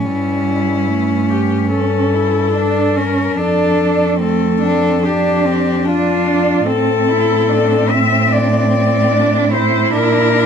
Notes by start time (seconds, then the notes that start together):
Already playing: C#4
0.03 G2 G3 E4
0.87 A3
1.30 G4
1.71 C#4 A4
2.13 E4
2.54 D4
2.96 C#4 A#4
3.37 F2 D4 A4
4.20 A3 C4 A4
4.62 C4 D4
5.03 D4 G4
5.45 C4
5.85 D4 F4
6.66 A2 C4 A4
7.09 E4
7.50 D4
7.90 C4 E5
8.31 D4 D5
8.71 C4
9.11 D4
9.53 E4 C5
9.93 A#2 D4 A#4